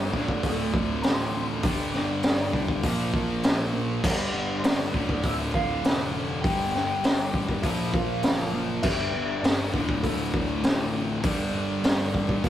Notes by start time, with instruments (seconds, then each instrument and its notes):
Already playing: picked electric bass G1, distorted electric guitar G2 D3 G3, tonewheel organ G3 B3 D4, clean electric guitar D4 D5
0.13 picked electric bass D1, distorted electric guitar D2 A2, tonewheel organ F3 A3 D4, kick, snare
0.17 distorted electric guitar D3
0.29 kick
0.43 picked electric bass D1, clean electric guitar A3 A4, kick, open hi-hat
0.74 picked electric bass D1, kick
1.02 picked electric bass A1, distorted electric guitar D2 A2, clean electric guitar C4 C5, snare, open hi-hat
1.07 distorted electric guitar D3
1.62 picked electric bass G1, distorted electric guitar G2 D3, clean electric guitar D4 D5, kick, open hi-hat
1.66 distorted electric guitar G3, tonewheel organ G3 A#3
1.92 picked electric bass G1, clean electric guitar D4 D5, snare
2.23 picked electric bass G1, snare, open hi-hat
2.52 picked electric bass C2, distorted electric guitar G2 D3 G3, kick
2.68 kick
2.83 picked electric bass A#1, distorted electric guitar A#2 F3, tonewheel organ F3 D4, kick, open hi-hat
2.87 distorted electric guitar A#3
3.13 picked electric bass A#1, kick
3.43 picked electric bass A#1, snare, open hi-hat
3.73 distorted electric guitar A#2 F3 A#3
4.02 picked electric bass G1, distorted electric guitar G2 D3 G3, tonewheel organ G3 B3, clean electric guitar B3, kick, crash
4.07 clean electric guitar B4
4.33 picked electric bass G1
4.58 clean electric guitar C5
4.63 picked electric bass G1, clean electric guitar D4 D5, snare, open hi-hat
4.92 picked electric bass D1, distorted electric guitar D2 A2, tonewheel organ F3 A3, kick
4.96 distorted electric guitar D3
5.09 kick
5.23 picked electric bass D1, clean electric guitar E4 E5, kick, open hi-hat
5.54 picked electric bass D1, clean electric guitar F4 F5, kick
5.84 picked electric bass F1, distorted electric guitar D2 A2 D3, snare, open hi-hat
6.41 picked electric bass G1, distorted electric guitar G2, tonewheel organ G3 A#3, clean electric guitar G4 G5, kick, open hi-hat
6.46 distorted electric guitar D3 G3
6.72 picked electric bass G1, clean electric guitar G4 G5, snare
7.04 picked electric bass G1, snare, open hi-hat
7.34 picked electric bass A1, distorted electric guitar G2 D3 G3, kick
7.49 kick
7.62 picked electric bass A#1, distorted electric guitar A#2 F3, tonewheel organ F3, clean electric guitar E4 E5, kick, open hi-hat
7.67 distorted electric guitar A#3
7.93 picked electric bass A#1, clean electric guitar F4 F5, kick
8.23 picked electric bass F#1, snare, open hi-hat
8.54 distorted electric guitar A#2 F3 A#3
8.82 picked electric bass G1, distorted electric guitar G2 D3, tonewheel organ G3 B3 D4, clean electric guitar E4 E5, kick, crash
8.87 distorted electric guitar G3
9.14 picked electric bass G1
9.42 picked electric bass G1, clean electric guitar D4 D5, snare, open hi-hat
9.73 picked electric bass D1, distorted electric guitar D2 A2 D3, tonewheel organ F3 A3, kick
9.89 kick
10.03 picked electric bass D1, clean electric guitar A3 A4, kick, open hi-hat
10.34 picked electric bass D1, kick
10.62 picked electric bass A1, distorted electric guitar D2 A2, clean electric guitar C4 C5, snare, open hi-hat
10.67 distorted electric guitar D3
11.21 picked electric bass G1, distorted electric guitar G2 D3, tonewheel organ G3 A#3 D4, clean electric guitar D4 D5, kick, open hi-hat
11.28 distorted electric guitar G3
11.54 picked electric bass G1, clean electric guitar D4 D5
11.84 picked electric bass G1, snare, open hi-hat
12.14 picked electric bass A1, distorted electric guitar G2 D3 G3, kick
12.29 kick
12.44 picked electric bass A#1, distorted electric guitar A#2 F3, tonewheel organ F3, kick, open hi-hat